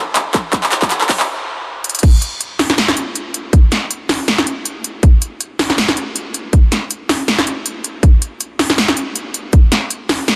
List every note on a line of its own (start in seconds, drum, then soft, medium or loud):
0.16 clap medium
0.16 closed hi-hat medium
0.34 kick loud
0.34 clap medium
0.34 closed hi-hat medium
0.53 kick loud
0.53 clap medium
0.53 closed hi-hat medium
0.63 clap medium
0.72 clap loud
0.72 closed hi-hat medium
0.82 kick loud
0.82 clap medium
0.90 clap loud
0.90 closed hi-hat medium
1.01 clap medium
1.09 kick medium
1.09 clap loud
1.09 open hi-hat medium
1.20 clap medium
1.84 closed hi-hat medium
1.89 closed hi-hat medium
1.95 closed hi-hat medium
1.99 closed hi-hat medium
2.03 kick loud
2.03 closed hi-hat medium
2.03 crash loud
2.22 closed hi-hat medium
2.41 closed hi-hat medium
2.59 snare medium
2.59 open hi-hat medium
2.70 snare medium
2.78 snare loud
2.78 closed hi-hat medium
2.88 snare medium
2.97 closed hi-hat medium
3.15 closed hi-hat medium
3.34 closed hi-hat medium
3.53 kick loud
3.53 closed hi-hat medium
3.72 snare medium
3.72 closed hi-hat medium
3.91 closed hi-hat medium
4.09 snare medium
4.09 open hi-hat medium
4.28 snare loud
4.28 closed hi-hat medium
4.38 snare medium
4.47 closed hi-hat medium
4.65 closed hi-hat medium
4.84 closed hi-hat medium
5.03 kick loud
5.03 closed hi-hat medium
5.22 closed hi-hat medium
5.41 closed hi-hat medium
5.59 snare medium
5.59 open hi-hat medium
5.70 snare medium
5.78 snare loud
5.78 closed hi-hat medium
5.88 snare medium
5.97 closed hi-hat medium
6.16 closed hi-hat medium
6.34 closed hi-hat medium
6.53 kick loud
6.53 closed hi-hat medium
6.72 snare medium
6.72 closed hi-hat medium
6.91 closed hi-hat medium
7.09 snare medium
7.09 open hi-hat medium
7.28 snare loud
7.28 closed hi-hat medium
7.39 snare medium
7.47 closed hi-hat medium
7.66 closed hi-hat medium
7.84 closed hi-hat medium
8.03 kick loud
8.03 closed hi-hat medium
8.22 closed hi-hat medium
8.41 closed hi-hat medium
8.59 snare medium
8.59 open hi-hat medium
8.70 snare medium
8.78 snare loud
8.78 closed hi-hat medium
8.88 snare medium
8.97 closed hi-hat medium
9.16 closed hi-hat medium
9.34 closed hi-hat medium
9.53 kick loud
9.53 closed hi-hat medium
9.72 snare medium
9.72 closed hi-hat medium
9.90 closed hi-hat medium
10.09 snare medium
10.09 open hi-hat medium
10.28 snare loud
10.28 closed hi-hat medium